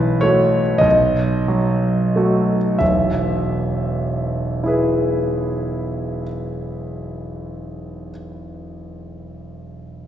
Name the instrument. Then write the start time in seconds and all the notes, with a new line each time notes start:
grand piano
Already playing: B1 E3 B4
0.21 A3 F#4 C#5
0.78 B1 D#5
1.48 F#3
2.16 A3 F#4
2.79 E1 B1 E5
4.64 E4 G#4 B4